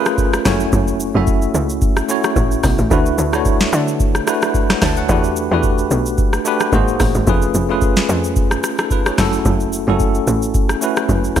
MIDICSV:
0, 0, Header, 1, 4, 480
1, 0, Start_track
1, 0, Tempo, 545455
1, 641, Time_signature, 4, 2, 24, 8
1, 10032, End_track
2, 0, Start_track
2, 0, Title_t, "Tine electric piano"
2, 0, Program_c, 0, 4
2, 0, Control_c, 0, 64, 127
2, 0, Note_on_c, 0, 57, 94
2, 0, Note_on_c, 0, 61, 84
2, 0, Note_on_c, 0, 65, 85
2, 0, Note_on_c, 0, 68, 83
2, 0, Note_on_c, 0, 70, 81
2, 0, Note_on_c, 0, 71, 105
2, 383, Note_off_c, 0, 57, 0
2, 389, Note_off_c, 0, 61, 0
2, 394, Note_on_c, 0, 57, 91
2, 399, Note_on_c, 0, 61, 87
2, 403, Note_off_c, 0, 65, 0
2, 406, Note_off_c, 0, 68, 0
2, 406, Note_on_c, 0, 64, 85
2, 411, Note_on_c, 0, 66, 86
2, 412, Control_c, 0, 64, 0
2, 414, Note_off_c, 0, 70, 0
2, 416, Note_on_c, 0, 73, 104
2, 437, Note_off_c, 0, 71, 0
2, 547, Control_c, 0, 64, 127
2, 877, Note_off_c, 0, 57, 0
2, 880, Note_off_c, 0, 61, 0
2, 883, Note_off_c, 0, 64, 0
2, 886, Note_off_c, 0, 66, 0
2, 888, Note_off_c, 0, 73, 0
2, 1005, Note_on_c, 0, 57, 85
2, 1011, Note_on_c, 0, 61, 79
2, 1016, Note_on_c, 0, 64, 77
2, 1022, Note_on_c, 0, 66, 75
2, 1028, Note_on_c, 0, 76, 93
2, 1676, Note_off_c, 0, 57, 0
2, 1679, Note_off_c, 0, 61, 0
2, 1681, Note_off_c, 0, 64, 0
2, 1684, Note_off_c, 0, 66, 0
2, 1687, Note_off_c, 0, 76, 0
2, 1833, Note_on_c, 0, 57, 90
2, 1839, Note_on_c, 0, 61, 86
2, 1844, Note_on_c, 0, 64, 83
2, 1850, Note_on_c, 0, 66, 85
2, 1857, Note_on_c, 0, 73, 102
2, 2422, Note_off_c, 0, 57, 0
2, 2425, Note_off_c, 0, 61, 0
2, 2428, Note_off_c, 0, 64, 0
2, 2431, Note_off_c, 0, 66, 0
2, 2434, Note_off_c, 0, 73, 0
2, 2556, Note_on_c, 0, 57, 88
2, 2562, Note_on_c, 0, 62, 83
2, 2567, Note_on_c, 0, 64, 86
2, 2571, Control_c, 0, 64, 0
2, 2572, Note_on_c, 0, 66, 84
2, 2578, Note_on_c, 0, 71, 98
2, 2744, Control_c, 0, 64, 127
2, 2851, Note_off_c, 0, 57, 0
2, 2854, Note_off_c, 0, 62, 0
2, 2856, Note_off_c, 0, 64, 0
2, 2859, Note_off_c, 0, 66, 0
2, 2862, Note_off_c, 0, 71, 0
2, 2928, Note_on_c, 0, 57, 88
2, 2933, Note_on_c, 0, 62, 80
2, 2938, Note_on_c, 0, 64, 77
2, 2945, Note_on_c, 0, 66, 82
2, 2950, Note_on_c, 0, 73, 97
2, 3598, Note_off_c, 0, 57, 0
2, 3600, Note_off_c, 0, 62, 0
2, 3602, Note_off_c, 0, 64, 0
2, 3606, Note_off_c, 0, 66, 0
2, 3608, Note_off_c, 0, 73, 0
2, 3756, Note_on_c, 0, 57, 90
2, 3763, Note_on_c, 0, 62, 81
2, 3767, Note_on_c, 0, 64, 82
2, 3772, Note_on_c, 0, 66, 85
2, 3778, Note_on_c, 0, 71, 104
2, 4140, Note_on_c, 0, 78, 67
2, 4145, Note_on_c, 0, 73, 57
2, 4239, Note_off_c, 0, 78, 0
2, 4242, Note_off_c, 0, 73, 0
2, 4247, Note_on_c, 0, 81, 75
2, 4253, Note_on_c, 0, 76, 63
2, 4344, Note_off_c, 0, 57, 0
2, 4347, Note_off_c, 0, 62, 0
2, 4349, Note_off_c, 0, 64, 0
2, 4352, Note_off_c, 0, 66, 0
2, 4355, Note_off_c, 0, 71, 0
2, 4369, Note_off_c, 0, 81, 0
2, 4373, Note_off_c, 0, 76, 0
2, 4379, Note_on_c, 0, 78, 69
2, 4386, Note_on_c, 0, 73, 55
2, 4477, Note_on_c, 0, 57, 89
2, 4483, Note_on_c, 0, 62, 83
2, 4488, Note_on_c, 0, 66, 82
2, 4490, Control_c, 0, 64, 0
2, 4494, Note_on_c, 0, 67, 85
2, 4499, Note_on_c, 0, 71, 100
2, 4604, Note_off_c, 0, 78, 0
2, 4607, Note_off_c, 0, 73, 0
2, 4658, Control_c, 0, 64, 127
2, 4771, Note_off_c, 0, 57, 0
2, 4774, Note_off_c, 0, 62, 0
2, 4777, Note_off_c, 0, 66, 0
2, 4780, Note_off_c, 0, 67, 0
2, 4783, Note_off_c, 0, 71, 0
2, 4848, Note_on_c, 0, 57, 84
2, 4853, Note_on_c, 0, 62, 80
2, 4859, Note_on_c, 0, 66, 79
2, 4865, Note_on_c, 0, 67, 80
2, 4871, Note_on_c, 0, 71, 99
2, 5518, Note_off_c, 0, 57, 0
2, 5520, Note_off_c, 0, 62, 0
2, 5523, Note_off_c, 0, 66, 0
2, 5526, Note_off_c, 0, 67, 0
2, 5529, Note_off_c, 0, 71, 0
2, 5676, Note_on_c, 0, 57, 94
2, 5682, Note_on_c, 0, 62, 84
2, 5689, Note_on_c, 0, 66, 81
2, 5693, Note_on_c, 0, 67, 84
2, 5699, Note_on_c, 0, 71, 107
2, 5917, Note_off_c, 0, 66, 0
2, 5917, Note_on_c, 0, 58, 91
2, 5918, Note_off_c, 0, 57, 0
2, 5921, Note_off_c, 0, 62, 0
2, 5922, Note_on_c, 0, 63, 82
2, 5927, Note_off_c, 0, 67, 0
2, 5928, Note_on_c, 0, 66, 81
2, 5930, Note_off_c, 0, 71, 0
2, 5931, Control_c, 0, 64, 0
2, 5934, Note_on_c, 0, 68, 86
2, 5939, Note_on_c, 0, 72, 107
2, 6090, Control_c, 0, 64, 127
2, 6312, Note_off_c, 0, 58, 0
2, 6315, Note_off_c, 0, 63, 0
2, 6318, Note_off_c, 0, 66, 0
2, 6321, Note_off_c, 0, 68, 0
2, 6323, Note_off_c, 0, 72, 0
2, 6397, Note_on_c, 0, 57, 92
2, 6403, Note_on_c, 0, 61, 79
2, 6408, Note_on_c, 0, 65, 86
2, 6413, Control_c, 0, 64, 0
2, 6414, Note_on_c, 0, 68, 80
2, 6419, Note_on_c, 0, 71, 101
2, 6547, Control_c, 0, 64, 127
2, 6691, Note_off_c, 0, 57, 0
2, 6695, Note_off_c, 0, 61, 0
2, 6697, Note_off_c, 0, 65, 0
2, 6700, Note_off_c, 0, 68, 0
2, 6702, Note_off_c, 0, 71, 0
2, 6766, Note_on_c, 0, 57, 84
2, 6773, Note_on_c, 0, 61, 78
2, 6778, Note_on_c, 0, 65, 79
2, 6784, Note_on_c, 0, 68, 79
2, 6790, Note_on_c, 0, 71, 98
2, 7363, Note_off_c, 0, 65, 0
2, 7366, Note_off_c, 0, 68, 0
2, 7369, Note_off_c, 0, 71, 0
2, 7437, Note_off_c, 0, 57, 0
2, 7440, Note_off_c, 0, 61, 0
2, 7738, Note_on_c, 0, 69, 69
2, 7743, Note_on_c, 0, 63, 59
2, 7838, Note_off_c, 0, 69, 0
2, 7841, Note_off_c, 0, 63, 0
2, 7848, Note_on_c, 0, 71, 77
2, 7854, Note_on_c, 0, 65, 64
2, 7970, Note_off_c, 0, 71, 0
2, 7973, Note_off_c, 0, 65, 0
2, 7979, Note_on_c, 0, 73, 68
2, 7984, Note_on_c, 0, 68, 55
2, 8075, Note_on_c, 0, 57, 91
2, 8081, Note_on_c, 0, 61, 83
2, 8085, Note_on_c, 0, 64, 86
2, 8091, Note_on_c, 0, 66, 84
2, 8092, Control_c, 0, 64, 0
2, 8096, Note_on_c, 0, 69, 103
2, 8204, Note_off_c, 0, 73, 0
2, 8207, Note_off_c, 0, 68, 0
2, 8227, Control_c, 0, 64, 127
2, 8558, Note_off_c, 0, 57, 0
2, 8560, Note_off_c, 0, 61, 0
2, 8563, Note_off_c, 0, 64, 0
2, 8566, Note_off_c, 0, 66, 0
2, 8568, Note_off_c, 0, 69, 0
2, 8686, Note_on_c, 0, 57, 86
2, 8692, Note_on_c, 0, 61, 82
2, 8697, Note_on_c, 0, 64, 76
2, 8703, Note_on_c, 0, 66, 81
2, 8709, Note_on_c, 0, 69, 94
2, 9356, Note_off_c, 0, 57, 0
2, 9359, Note_off_c, 0, 61, 0
2, 9362, Note_off_c, 0, 64, 0
2, 9365, Note_off_c, 0, 66, 0
2, 9368, Note_off_c, 0, 69, 0
2, 9516, Note_on_c, 0, 57, 89
2, 9521, Note_on_c, 0, 61, 84
2, 9527, Note_on_c, 0, 64, 83
2, 9533, Note_on_c, 0, 66, 82
2, 9538, Note_on_c, 0, 71, 104
2, 10032, Note_off_c, 0, 57, 0
2, 10032, Note_off_c, 0, 61, 0
2, 10032, Note_off_c, 0, 64, 0
2, 10032, Note_off_c, 0, 66, 0
2, 10032, Note_off_c, 0, 71, 0
2, 10032, End_track
3, 0, Start_track
3, 0, Title_t, "Log drum bass"
3, 0, Program_c, 1, 39
3, 403, Note_on_c, 1, 30, 103
3, 629, Note_off_c, 1, 30, 0
3, 641, Note_on_c, 1, 30, 109
3, 992, Note_off_c, 1, 30, 0
3, 1012, Note_on_c, 1, 30, 100
3, 1342, Note_off_c, 1, 30, 0
3, 1359, Note_on_c, 1, 37, 96
3, 1587, Note_off_c, 1, 37, 0
3, 2078, Note_on_c, 1, 33, 106
3, 2306, Note_off_c, 1, 33, 0
3, 2323, Note_on_c, 1, 35, 101
3, 2447, Note_off_c, 1, 35, 0
3, 2452, Note_on_c, 1, 33, 94
3, 2554, Note_off_c, 1, 33, 0
3, 2562, Note_on_c, 1, 38, 118
3, 2788, Note_off_c, 1, 38, 0
3, 2800, Note_on_c, 1, 38, 99
3, 3254, Note_off_c, 1, 38, 0
3, 3281, Note_on_c, 1, 50, 107
3, 3735, Note_off_c, 1, 50, 0
3, 4243, Note_on_c, 1, 38, 99
3, 4469, Note_off_c, 1, 38, 0
3, 4480, Note_on_c, 1, 40, 123
3, 4832, Note_off_c, 1, 40, 0
3, 4853, Note_on_c, 1, 40, 99
3, 5182, Note_off_c, 1, 40, 0
3, 5200, Note_on_c, 1, 35, 101
3, 5427, Note_off_c, 1, 35, 0
3, 5918, Note_on_c, 1, 32, 107
3, 6146, Note_off_c, 1, 32, 0
3, 6163, Note_on_c, 1, 33, 94
3, 6287, Note_off_c, 1, 33, 0
3, 6291, Note_on_c, 1, 32, 90
3, 6394, Note_off_c, 1, 32, 0
3, 6400, Note_on_c, 1, 29, 111
3, 6627, Note_off_c, 1, 29, 0
3, 6640, Note_on_c, 1, 29, 98
3, 7094, Note_off_c, 1, 29, 0
3, 7121, Note_on_c, 1, 41, 102
3, 7575, Note_off_c, 1, 41, 0
3, 8083, Note_on_c, 1, 30, 101
3, 8309, Note_off_c, 1, 30, 0
3, 8320, Note_on_c, 1, 30, 114
3, 8672, Note_off_c, 1, 30, 0
3, 8692, Note_on_c, 1, 30, 98
3, 9021, Note_off_c, 1, 30, 0
3, 9040, Note_on_c, 1, 33, 102
3, 9267, Note_off_c, 1, 33, 0
3, 9759, Note_on_c, 1, 30, 97
3, 9987, Note_off_c, 1, 30, 0
3, 10003, Note_on_c, 1, 33, 98
3, 10032, Note_off_c, 1, 33, 0
3, 10032, End_track
4, 0, Start_track
4, 0, Title_t, "Drums"
4, 51, Note_on_c, 9, 82, 61
4, 54, Note_on_c, 9, 37, 108
4, 139, Note_off_c, 9, 82, 0
4, 142, Note_off_c, 9, 37, 0
4, 158, Note_on_c, 9, 36, 98
4, 160, Note_on_c, 9, 82, 73
4, 246, Note_off_c, 9, 36, 0
4, 248, Note_off_c, 9, 82, 0
4, 294, Note_on_c, 9, 37, 106
4, 294, Note_on_c, 9, 82, 57
4, 382, Note_off_c, 9, 37, 0
4, 382, Note_off_c, 9, 82, 0
4, 399, Note_on_c, 9, 37, 90
4, 399, Note_on_c, 9, 38, 62
4, 400, Note_on_c, 9, 46, 72
4, 400, Note_on_c, 9, 82, 87
4, 403, Note_on_c, 9, 36, 90
4, 487, Note_off_c, 9, 37, 0
4, 487, Note_off_c, 9, 38, 0
4, 488, Note_off_c, 9, 46, 0
4, 488, Note_off_c, 9, 82, 0
4, 491, Note_off_c, 9, 36, 0
4, 529, Note_on_c, 9, 82, 53
4, 617, Note_off_c, 9, 82, 0
4, 640, Note_on_c, 9, 36, 113
4, 640, Note_on_c, 9, 82, 84
4, 728, Note_off_c, 9, 36, 0
4, 728, Note_off_c, 9, 82, 0
4, 771, Note_on_c, 9, 82, 58
4, 859, Note_off_c, 9, 82, 0
4, 882, Note_on_c, 9, 82, 106
4, 970, Note_off_c, 9, 82, 0
4, 1118, Note_on_c, 9, 82, 64
4, 1120, Note_on_c, 9, 36, 103
4, 1206, Note_off_c, 9, 82, 0
4, 1208, Note_off_c, 9, 36, 0
4, 1250, Note_on_c, 9, 82, 56
4, 1338, Note_off_c, 9, 82, 0
4, 1362, Note_on_c, 9, 82, 91
4, 1450, Note_off_c, 9, 82, 0
4, 1493, Note_on_c, 9, 82, 62
4, 1581, Note_off_c, 9, 82, 0
4, 1599, Note_on_c, 9, 36, 119
4, 1599, Note_on_c, 9, 82, 72
4, 1687, Note_off_c, 9, 36, 0
4, 1687, Note_off_c, 9, 82, 0
4, 1730, Note_on_c, 9, 37, 94
4, 1732, Note_on_c, 9, 82, 56
4, 1818, Note_off_c, 9, 37, 0
4, 1820, Note_off_c, 9, 82, 0
4, 1840, Note_on_c, 9, 82, 117
4, 1928, Note_off_c, 9, 82, 0
4, 1971, Note_on_c, 9, 82, 61
4, 1974, Note_on_c, 9, 37, 108
4, 2059, Note_off_c, 9, 82, 0
4, 2062, Note_off_c, 9, 37, 0
4, 2078, Note_on_c, 9, 36, 100
4, 2080, Note_on_c, 9, 82, 71
4, 2166, Note_off_c, 9, 36, 0
4, 2168, Note_off_c, 9, 82, 0
4, 2213, Note_on_c, 9, 82, 55
4, 2301, Note_off_c, 9, 82, 0
4, 2318, Note_on_c, 9, 37, 90
4, 2319, Note_on_c, 9, 46, 75
4, 2319, Note_on_c, 9, 82, 89
4, 2323, Note_on_c, 9, 36, 92
4, 2406, Note_off_c, 9, 37, 0
4, 2407, Note_off_c, 9, 46, 0
4, 2407, Note_off_c, 9, 82, 0
4, 2411, Note_off_c, 9, 36, 0
4, 2450, Note_on_c, 9, 82, 52
4, 2538, Note_off_c, 9, 82, 0
4, 2561, Note_on_c, 9, 36, 114
4, 2562, Note_on_c, 9, 82, 83
4, 2649, Note_off_c, 9, 36, 0
4, 2650, Note_off_c, 9, 82, 0
4, 2692, Note_on_c, 9, 82, 57
4, 2780, Note_off_c, 9, 82, 0
4, 2802, Note_on_c, 9, 82, 108
4, 2890, Note_off_c, 9, 82, 0
4, 2932, Note_on_c, 9, 37, 87
4, 2933, Note_on_c, 9, 82, 57
4, 3020, Note_off_c, 9, 37, 0
4, 3021, Note_off_c, 9, 82, 0
4, 3040, Note_on_c, 9, 36, 102
4, 3040, Note_on_c, 9, 82, 66
4, 3128, Note_off_c, 9, 36, 0
4, 3128, Note_off_c, 9, 82, 0
4, 3171, Note_on_c, 9, 82, 55
4, 3174, Note_on_c, 9, 38, 68
4, 3259, Note_off_c, 9, 82, 0
4, 3262, Note_off_c, 9, 38, 0
4, 3282, Note_on_c, 9, 82, 96
4, 3370, Note_off_c, 9, 82, 0
4, 3414, Note_on_c, 9, 82, 65
4, 3502, Note_off_c, 9, 82, 0
4, 3520, Note_on_c, 9, 36, 117
4, 3520, Note_on_c, 9, 82, 76
4, 3608, Note_off_c, 9, 36, 0
4, 3608, Note_off_c, 9, 82, 0
4, 3651, Note_on_c, 9, 37, 93
4, 3653, Note_on_c, 9, 82, 54
4, 3739, Note_off_c, 9, 37, 0
4, 3741, Note_off_c, 9, 82, 0
4, 3761, Note_on_c, 9, 82, 117
4, 3762, Note_on_c, 9, 37, 97
4, 3849, Note_off_c, 9, 82, 0
4, 3850, Note_off_c, 9, 37, 0
4, 3892, Note_on_c, 9, 82, 62
4, 3895, Note_on_c, 9, 37, 110
4, 3980, Note_off_c, 9, 82, 0
4, 3983, Note_off_c, 9, 37, 0
4, 3999, Note_on_c, 9, 36, 94
4, 4001, Note_on_c, 9, 82, 70
4, 4087, Note_off_c, 9, 36, 0
4, 4089, Note_off_c, 9, 82, 0
4, 4135, Note_on_c, 9, 82, 56
4, 4136, Note_on_c, 9, 37, 104
4, 4136, Note_on_c, 9, 38, 75
4, 4223, Note_off_c, 9, 82, 0
4, 4224, Note_off_c, 9, 37, 0
4, 4224, Note_off_c, 9, 38, 0
4, 4239, Note_on_c, 9, 37, 89
4, 4239, Note_on_c, 9, 38, 67
4, 4240, Note_on_c, 9, 46, 72
4, 4240, Note_on_c, 9, 82, 88
4, 4243, Note_on_c, 9, 36, 88
4, 4327, Note_off_c, 9, 37, 0
4, 4327, Note_off_c, 9, 38, 0
4, 4328, Note_off_c, 9, 46, 0
4, 4328, Note_off_c, 9, 82, 0
4, 4331, Note_off_c, 9, 36, 0
4, 4370, Note_on_c, 9, 82, 53
4, 4458, Note_off_c, 9, 82, 0
4, 4480, Note_on_c, 9, 82, 84
4, 4481, Note_on_c, 9, 36, 113
4, 4568, Note_off_c, 9, 82, 0
4, 4569, Note_off_c, 9, 36, 0
4, 4611, Note_on_c, 9, 82, 56
4, 4699, Note_off_c, 9, 82, 0
4, 4720, Note_on_c, 9, 82, 100
4, 4808, Note_off_c, 9, 82, 0
4, 4957, Note_on_c, 9, 82, 68
4, 4959, Note_on_c, 9, 36, 102
4, 5045, Note_off_c, 9, 82, 0
4, 5047, Note_off_c, 9, 36, 0
4, 5089, Note_on_c, 9, 82, 56
4, 5177, Note_off_c, 9, 82, 0
4, 5200, Note_on_c, 9, 82, 91
4, 5288, Note_off_c, 9, 82, 0
4, 5333, Note_on_c, 9, 82, 67
4, 5421, Note_off_c, 9, 82, 0
4, 5438, Note_on_c, 9, 82, 69
4, 5439, Note_on_c, 9, 36, 116
4, 5526, Note_off_c, 9, 82, 0
4, 5527, Note_off_c, 9, 36, 0
4, 5570, Note_on_c, 9, 37, 91
4, 5572, Note_on_c, 9, 82, 54
4, 5658, Note_off_c, 9, 37, 0
4, 5660, Note_off_c, 9, 82, 0
4, 5680, Note_on_c, 9, 82, 118
4, 5768, Note_off_c, 9, 82, 0
4, 5810, Note_on_c, 9, 82, 61
4, 5813, Note_on_c, 9, 37, 107
4, 5898, Note_off_c, 9, 82, 0
4, 5901, Note_off_c, 9, 37, 0
4, 5918, Note_on_c, 9, 36, 102
4, 5919, Note_on_c, 9, 82, 68
4, 6006, Note_off_c, 9, 36, 0
4, 6007, Note_off_c, 9, 82, 0
4, 6054, Note_on_c, 9, 82, 55
4, 6142, Note_off_c, 9, 82, 0
4, 6159, Note_on_c, 9, 37, 89
4, 6160, Note_on_c, 9, 46, 73
4, 6160, Note_on_c, 9, 82, 86
4, 6163, Note_on_c, 9, 36, 95
4, 6247, Note_off_c, 9, 37, 0
4, 6248, Note_off_c, 9, 46, 0
4, 6248, Note_off_c, 9, 82, 0
4, 6251, Note_off_c, 9, 36, 0
4, 6288, Note_on_c, 9, 82, 55
4, 6376, Note_off_c, 9, 82, 0
4, 6399, Note_on_c, 9, 82, 86
4, 6400, Note_on_c, 9, 36, 113
4, 6487, Note_off_c, 9, 82, 0
4, 6488, Note_off_c, 9, 36, 0
4, 6529, Note_on_c, 9, 82, 58
4, 6617, Note_off_c, 9, 82, 0
4, 6639, Note_on_c, 9, 82, 104
4, 6727, Note_off_c, 9, 82, 0
4, 6877, Note_on_c, 9, 82, 67
4, 6879, Note_on_c, 9, 36, 100
4, 6965, Note_off_c, 9, 82, 0
4, 6967, Note_off_c, 9, 36, 0
4, 7009, Note_on_c, 9, 82, 56
4, 7012, Note_on_c, 9, 38, 67
4, 7097, Note_off_c, 9, 82, 0
4, 7100, Note_off_c, 9, 38, 0
4, 7121, Note_on_c, 9, 82, 91
4, 7209, Note_off_c, 9, 82, 0
4, 7254, Note_on_c, 9, 82, 64
4, 7342, Note_off_c, 9, 82, 0
4, 7358, Note_on_c, 9, 82, 73
4, 7359, Note_on_c, 9, 36, 115
4, 7446, Note_off_c, 9, 82, 0
4, 7447, Note_off_c, 9, 36, 0
4, 7490, Note_on_c, 9, 37, 97
4, 7491, Note_on_c, 9, 82, 58
4, 7578, Note_off_c, 9, 37, 0
4, 7579, Note_off_c, 9, 82, 0
4, 7601, Note_on_c, 9, 37, 98
4, 7601, Note_on_c, 9, 82, 114
4, 7689, Note_off_c, 9, 37, 0
4, 7689, Note_off_c, 9, 82, 0
4, 7731, Note_on_c, 9, 82, 59
4, 7734, Note_on_c, 9, 37, 109
4, 7819, Note_off_c, 9, 82, 0
4, 7822, Note_off_c, 9, 37, 0
4, 7838, Note_on_c, 9, 36, 93
4, 7839, Note_on_c, 9, 82, 70
4, 7926, Note_off_c, 9, 36, 0
4, 7927, Note_off_c, 9, 82, 0
4, 7974, Note_on_c, 9, 37, 108
4, 7974, Note_on_c, 9, 82, 55
4, 8062, Note_off_c, 9, 37, 0
4, 8062, Note_off_c, 9, 82, 0
4, 8080, Note_on_c, 9, 37, 93
4, 8080, Note_on_c, 9, 38, 67
4, 8081, Note_on_c, 9, 46, 73
4, 8081, Note_on_c, 9, 82, 90
4, 8083, Note_on_c, 9, 36, 91
4, 8168, Note_off_c, 9, 37, 0
4, 8168, Note_off_c, 9, 38, 0
4, 8169, Note_off_c, 9, 46, 0
4, 8169, Note_off_c, 9, 82, 0
4, 8171, Note_off_c, 9, 36, 0
4, 8209, Note_on_c, 9, 82, 53
4, 8297, Note_off_c, 9, 82, 0
4, 8320, Note_on_c, 9, 36, 113
4, 8320, Note_on_c, 9, 82, 86
4, 8408, Note_off_c, 9, 36, 0
4, 8408, Note_off_c, 9, 82, 0
4, 8450, Note_on_c, 9, 82, 58
4, 8538, Note_off_c, 9, 82, 0
4, 8561, Note_on_c, 9, 82, 100
4, 8649, Note_off_c, 9, 82, 0
4, 8798, Note_on_c, 9, 82, 64
4, 8800, Note_on_c, 9, 36, 94
4, 8886, Note_off_c, 9, 82, 0
4, 8888, Note_off_c, 9, 36, 0
4, 8930, Note_on_c, 9, 82, 56
4, 9018, Note_off_c, 9, 82, 0
4, 9041, Note_on_c, 9, 82, 91
4, 9129, Note_off_c, 9, 82, 0
4, 9174, Note_on_c, 9, 82, 63
4, 9262, Note_off_c, 9, 82, 0
4, 9278, Note_on_c, 9, 82, 72
4, 9280, Note_on_c, 9, 36, 122
4, 9366, Note_off_c, 9, 82, 0
4, 9368, Note_off_c, 9, 36, 0
4, 9410, Note_on_c, 9, 37, 93
4, 9412, Note_on_c, 9, 82, 58
4, 9498, Note_off_c, 9, 37, 0
4, 9500, Note_off_c, 9, 82, 0
4, 9521, Note_on_c, 9, 82, 118
4, 9609, Note_off_c, 9, 82, 0
4, 9651, Note_on_c, 9, 82, 63
4, 9654, Note_on_c, 9, 37, 109
4, 9739, Note_off_c, 9, 82, 0
4, 9742, Note_off_c, 9, 37, 0
4, 9759, Note_on_c, 9, 36, 102
4, 9761, Note_on_c, 9, 82, 69
4, 9847, Note_off_c, 9, 36, 0
4, 9849, Note_off_c, 9, 82, 0
4, 9895, Note_on_c, 9, 82, 57
4, 9983, Note_off_c, 9, 82, 0
4, 9999, Note_on_c, 9, 37, 88
4, 10000, Note_on_c, 9, 46, 72
4, 10000, Note_on_c, 9, 82, 92
4, 10003, Note_on_c, 9, 36, 92
4, 10032, Note_off_c, 9, 36, 0
4, 10032, Note_off_c, 9, 37, 0
4, 10032, Note_off_c, 9, 46, 0
4, 10032, Note_off_c, 9, 82, 0
4, 10032, End_track
0, 0, End_of_file